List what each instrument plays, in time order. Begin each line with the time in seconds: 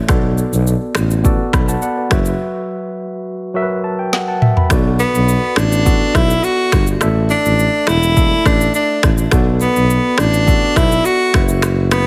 Already playing: tine electric piano A3 A4 C#5 D5 E5
0.08 tuba B1, tine electric piano B3 F#4 A4 D5, finger snap, kick, cross-stick, shaker
0.38 shaker
0.53 tuba B1, shaker
0.67 shaker
0.95 tuba A1, finger snap, cross-stick, shaker
1.11 shaker
1.23 tine electric piano B3 F#4 A4 D5, kick, shaker
1.53 tuba B1, tine electric piano B5, finger snap, kick, cross-stick, shaker
1.68 tine electric piano F#5 A5, shaker
1.82 tine electric piano D5 F#5, shaker
1.97 tine electric piano B4 D5
2.10 tuba F#1, tine electric piano F#3 F#4 B4 E5, finger snap, kick, cross-stick, shaker
2.26 shaker
3.54 tine electric piano F#3 F#4 A#4 E5
3.62 tine electric piano B4
3.84 tine electric piano A5
3.99 tine electric piano G5
4.13 tine electric piano F#5, snare
4.28 tine electric piano F#5 A5
4.42 tine electric piano E5, mid tom
4.57 tine electric piano B5, floor tom
4.69 tuba B1, tine electric piano B3 F#4 A4 D5, finger snap, kick, cross-stick, shaker
4.99 tenor saxophone B3, shaker
5.15 tuba B1, shaker
5.29 shaker
5.56 tuba A1, tenor saxophone D4, finger snap, cross-stick, shaker
5.72 shaker
5.85 tine electric piano B3 F#4 A4 D5, kick, shaker
6.15 tuba B1, tenor saxophone E4, finger snap, kick, cross-stick, shaker
6.30 shaker
6.44 tenor saxophone F#4, shaker
6.72 tuba G1, finger snap, kick, cross-stick, shaker
6.87 shaker
7.00 tuba A1, tine electric piano A3 A4 D5 E5, finger snap, cross-stick, shaker
7.30 tenor saxophone D4, shaker
7.45 tuba A1, shaker
7.59 shaker
7.87 tuba E1, tenor saxophone E4, finger snap, cross-stick, shaker
8.03 shaker
8.16 tine electric piano A3 A4 D5 E5, kick, shaker
8.46 tuba A1, tenor saxophone D4, finger snap, kick, cross-stick, shaker
8.61 shaker
8.74 tenor saxophone D4, shaker
9.03 tuba A1, finger snap, kick, cross-stick, shaker
9.18 shaker
9.31 tuba B1, tine electric piano B3 F#4 A4 D5, finger snap, kick, cross-stick, shaker
9.61 tenor saxophone B3, shaker
9.76 tuba B1, shaker
9.90 shaker
10.18 tuba A1, tenor saxophone D4, finger snap, cross-stick, shaker
10.34 shaker
10.46 tine electric piano B3 F#4 A4 D5, kick, shaker
10.76 tuba B1, tenor saxophone E4, finger snap, kick, cross-stick, shaker
10.92 shaker
11.05 tenor saxophone F#4, shaker
11.33 tuba F#1, tine electric piano F#3 F#4 B4 E5, finger snap, kick, cross-stick, shaker
11.49 shaker
11.62 finger snap, cross-stick, shaker
11.91 tenor saxophone B3, finger snap, cross-stick, shaker